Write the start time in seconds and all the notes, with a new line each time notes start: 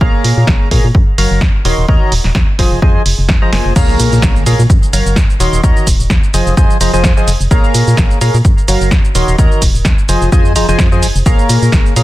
0.01 A#1 A#3 G#4 A#4 C#5 F5 A#5, kick
0.24 A#2, open hi-hat
0.37 A#2
0.47 A#1, kick, snare
0.71 A#2 G#4 A#4 C#5 F5 A#5, kick, open hi-hat
0.84 A#2
0.95 F#2, kick
1.18 F#1 F#3 F#4 A#4 C#5 F5 A#5, open hi-hat
1.31 F#1
1.41 F#2, kick, snare
1.65 D#1 D#3 F#4 A#4 C#5 D#5 C6, open hi-hat
1.78 D#1
1.88 D#2 D#3 F#4 A#4 C#5 D#5 A#5, kick
2.12 D#1, open hi-hat
2.24 D#1, snare
2.35 D#2, kick, snare
2.59 F1 F3 F4 G#4 C5 D#5 G#5, kick, open hi-hat
2.72 F1
2.82 F2 F3 F4 G#4 C5 D#5 G#5, kick
3.06 F1, open hi-hat
3.19 F1
3.29 F2, kick, snare
3.42 F3 F4 G#4 C5 D#5 A#5
3.53 F1 A#3 F4 G#4 C5 D#5 G#5, snare, open hi-hat
3.65 F1
3.76 A#1 A#3 G#4 A#4 C#5 F5 A#5, kick, crash, impact, shaker
3.89 shaker
4.00 A#2, open hi-hat, shaker
4.12 A#2, shaker
4.22 A#1, kick, snare, shaker
4.36 shaker
4.46 A#2 G#4 A#4 C#5 F5 A#5, open hi-hat, shaker
4.59 A#2, shaker
4.70 F#2, kick, shaker
4.83 shaker
4.93 F#1 F#3 F#4 A#4 C#5 F5 A#5, open hi-hat, shaker
5.06 F#1, shaker
5.16 F#2, kick, snare, shaker
5.30 shaker
5.40 D#1 D#3 F#4 A#4 C#5 D#5 C6, open hi-hat, shaker
5.53 D#1, shaker
5.63 D#2 D#3 F#4 A#4 C#5 D#5 A#5, kick, shaker
5.77 shaker
5.87 D#1, kick, open hi-hat, shaker
6.00 D#1, shaker
6.10 D#2, kick, snare, shaker
6.24 shaker
6.34 F1 F3 F4 G#4 C5 D#5 G#5, open hi-hat, shaker
6.47 F1, shaker
6.57 F2 F3 F4 G#4 C5 D#5 G#5, kick, shaker
6.70 shaker
6.81 F1 F3 F4 G#4 C5 D#5 A#5, open hi-hat, shaker
6.93 F1 F3 F4 G#4 C5 D#5 G#5, shaker
7.04 F2, kick, snare, shaker
7.17 F3 F4 G#4 C5 D#5 G#5, shaker
7.28 F1, open hi-hat, shaker
7.41 F1, shaker
7.51 A#1 A#3 G#4 A#4 C#5 F5 A#5, kick, shaker
7.64 shaker
7.74 A#2, open hi-hat, shaker
7.87 A#2, shaker
7.97 A#1, kick, snare, shaker
8.11 shaker
8.21 A#2 G#4 A#4 C#5 F5 A#5, open hi-hat, shaker
8.34 A#2, shaker
8.45 F#2, kick, shaker
8.58 shaker
8.68 F#1 F#3 F#4 A#4 C#5 F5 A#5, open hi-hat, shaker
8.81 F#1, shaker
8.91 F#2, kick, snare, shaker
9.05 shaker
9.15 D#1 D#3 F#4 A#4 C#5 D#5 C6, open hi-hat, shaker
9.28 D#1, shaker
9.38 D#2 D#3 F#4 A#4 C#5 D#5 A#5, kick, shaker
9.52 shaker
9.62 D#1, kick, open hi-hat, shaker
9.75 D#1, shaker
9.85 D#2, kick, snare, shaker
9.98 shaker
10.09 F1 F3 F4 G#4 C5 D#5 G#5, open hi-hat, shaker
10.22 F1, shaker
10.32 F2 F3 F4 G#4 C5 D#5 G#5, kick, shaker
10.45 shaker
10.56 F1 F3 F4 G#4 C5 D#5 A#5, open hi-hat, shaker
10.69 F1 F3 F4 G#4 C5 D#5 G#5, shaker
10.79 F2, kick, snare, shaker
10.92 F3 F4 G#4 C5 D#5 G#5, shaker
11.03 F1, open hi-hat, shaker
11.16 F1, shaker
11.26 A#1 A#3 G#4 A#4 C#5 F5 A#5, kick, shaker
11.39 shaker
11.49 A#2, open hi-hat, shaker
11.62 A#2, shaker
11.72 A#1, kick, snare, shaker
11.86 shaker
11.96 A#2 G#4 A#4 C#5 F5 A#5, open hi-hat, shaker